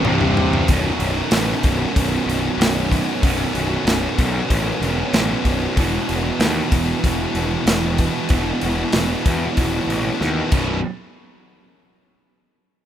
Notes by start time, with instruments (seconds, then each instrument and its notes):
0.03 picked electric bass C1, distorted electric guitar C2, mid tom
0.08 distorted electric guitar G2 C3
0.21 floor tom
0.37 floor tom
0.53 floor tom
0.68 picked electric bass B0, distorted electric guitar B1 F#2 B2, kick, open hi-hat
0.79 distorted electric guitar B1 F#2
0.85 distorted electric guitar B1 F#2
0.92 distorted electric guitar B1 F#2
0.99 picked electric bass B0, distorted electric guitar B1 F#2, open hi-hat
1.09 distorted electric guitar B1 F#2
1.16 distorted electric guitar B1 F#2
1.23 distorted electric guitar B1 F#2
1.31 picked electric bass A1, distorted electric guitar B1 F#2, snare, open hi-hat
1.39 distorted electric guitar B1 F#2
1.47 distorted electric guitar B1 F#2
1.54 distorted electric guitar B1 F#2
1.62 picked electric bass B0, distorted electric guitar B1 F#2, kick, open hi-hat
1.70 distorted electric guitar B1 F#2
1.77 distorted electric guitar B1 F#2
1.84 distorted electric guitar B1 F#2
1.93 picked electric bass B0, distorted electric guitar B1 F#2, kick, open hi-hat
2.00 distorted electric guitar B1 F#2
2.08 distorted electric guitar B1 F#2
2.15 distorted electric guitar B1 F#2
2.23 picked electric bass B0, distorted electric guitar B1 F#2
2.30 distorted electric guitar B1 F#2, open hi-hat
2.38 distorted electric guitar B1 F#2
2.46 distorted electric guitar B1 F#2
2.52 distorted electric guitar B1 F#2
2.58 picked electric bass B0, distorted electric guitar B1, snare, open hi-hat
2.62 distorted electric guitar F#2
2.69 distorted electric guitar B1 F#2
2.76 distorted electric guitar B1 F#2
2.83 distorted electric guitar B1 F#2
2.91 distorted electric guitar B1 F#2, kick, open hi-hat
3.00 distorted electric guitar B1 F#2
3.06 distorted electric guitar B1 F#2
3.15 distorted electric guitar B1 F#2
3.23 picked electric bass B0, distorted electric guitar B1 F#2 B2, kick, open hi-hat
3.30 distorted electric guitar B1 F#2
3.38 distorted electric guitar B1 F#2
3.46 distorted electric guitar B1 F#2
3.54 picked electric bass B0, distorted electric guitar B1 F#2, open hi-hat
3.61 distorted electric guitar B1 F#2
3.69 distorted electric guitar B1 F#2
3.77 distorted electric guitar B1 F#2
3.85 picked electric bass B0, distorted electric guitar B1 F#2, snare, open hi-hat
3.93 distorted electric guitar B1 F#2
4.00 distorted electric guitar B1 F#2
4.08 distorted electric guitar B1 F#2
4.15 distorted electric guitar B1 F#2, picked electric bass B1, kick, open hi-hat
4.23 distorted electric guitar B1 F#2
4.31 distorted electric guitar B1 F#2
4.38 distorted electric guitar B1 F#2
4.45 distorted electric guitar B1 F#2
4.50 picked electric bass A1, distorted electric guitar B1, kick, open hi-hat
4.55 distorted electric guitar F#2
4.62 distorted electric guitar B1 F#2
4.69 distorted electric guitar B1 F#2
4.77 distorted electric guitar B1 F#2
4.82 picked electric bass E1, distorted electric guitar B1 F#2, open hi-hat
4.92 distorted electric guitar B1 F#2
5.00 distorted electric guitar B1 F#2
5.08 distorted electric guitar B1 F#2
5.13 picked electric bass A1, distorted electric guitar B1 F#2, snare, open hi-hat
5.23 distorted electric guitar B1 F#2
5.30 distorted electric guitar B1 F#2
5.38 distorted electric guitar B1 F#2
5.45 picked electric bass B0, distorted electric guitar B1 F#2, kick, open hi-hat
5.53 distorted electric guitar B1 F#2
5.61 distorted electric guitar B1 F#2
5.69 distorted electric guitar B1 F#2
5.76 picked electric bass E1, distorted electric guitar E2 B2 E3, kick, open hi-hat
5.85 distorted electric guitar E2 B2
5.93 distorted electric guitar E2 B2
6.01 distorted electric guitar E2 B2
6.08 picked electric bass E1, distorted electric guitar E2 B2, open hi-hat
6.15 distorted electric guitar E2 B2
6.23 distorted electric guitar E2 B2
6.31 distorted electric guitar E2 B2
6.39 picked electric bass D#2, distorted electric guitar E2 B2, snare, open hi-hat
6.46 distorted electric guitar E2 B2
6.53 distorted electric guitar E2 B2
6.60 distorted electric guitar E2 B2
6.69 picked electric bass E1, distorted electric guitar E2 B2, kick, open hi-hat
6.76 distorted electric guitar E2 B2
6.85 distorted electric guitar E2 B2
6.92 distorted electric guitar E2 B2
6.99 distorted electric guitar E2 B2
7.04 picked electric bass E1, distorted electric guitar E2, kick, open hi-hat
7.08 distorted electric guitar B2
7.15 distorted electric guitar E2 B2
7.23 distorted electric guitar E2 B2
7.31 distorted electric guitar E2 B2
7.35 picked electric bass E1, distorted electric guitar E2 B2, open hi-hat
7.45 distorted electric guitar E2 B2
7.52 distorted electric guitar E2 B2
7.60 distorted electric guitar E2 B2
7.66 picked electric bass E1, distorted electric guitar E2 B2, snare, open hi-hat
7.75 distorted electric guitar E2 B2
7.83 distorted electric guitar E2 B2
7.91 distorted electric guitar E2 B2
7.98 distorted electric guitar E2 B2, kick, open hi-hat
8.06 distorted electric guitar E2 B2
8.13 distorted electric guitar E2 B2
8.21 distorted electric guitar E2 B2
8.29 picked electric bass E1, distorted electric guitar E2 B2 E3, kick, open hi-hat
8.38 distorted electric guitar E2 B2
8.46 distorted electric guitar E2 B2
8.53 distorted electric guitar E2 B2
8.61 picked electric bass E1, distorted electric guitar E2 B2, open hi-hat
8.69 distorted electric guitar E2 B2
8.76 distorted electric guitar E2 B2
8.84 distorted electric guitar E2 B2
8.92 picked electric bass E1, distorted electric guitar E2 B2, snare, open hi-hat
8.99 distorted electric guitar E2 B2
9.08 distorted electric guitar E2 B2
9.14 distorted electric guitar E2 B2
9.22 distorted electric guitar E2 B2
9.26 picked electric bass E2, distorted electric guitar B2, kick, open hi-hat
9.30 distorted electric guitar E2
9.38 distorted electric guitar E2 B2
9.45 distorted electric guitar E2 B2
9.53 distorted electric guitar E2 B2
9.57 picked electric bass D#1, distorted electric guitar E2 B2, kick, open hi-hat
9.68 distorted electric guitar E2 B2
9.76 distorted electric guitar E2 B2
9.83 distorted electric guitar E2 B2
9.87 picked electric bass A1, distorted electric guitar E2 B2, open hi-hat
9.99 distorted electric guitar E2 B2
10.06 distorted electric guitar E2 B2
10.14 distorted electric guitar E2 B2
10.21 picked electric bass D#2, distorted electric guitar E2 B2, snare
10.28 distorted electric guitar E2 B2
10.36 distorted electric guitar E2 B2
10.44 distorted electric guitar E2 B2
10.52 picked electric bass B0, distorted electric guitar B1 F#2 B2, kick, crash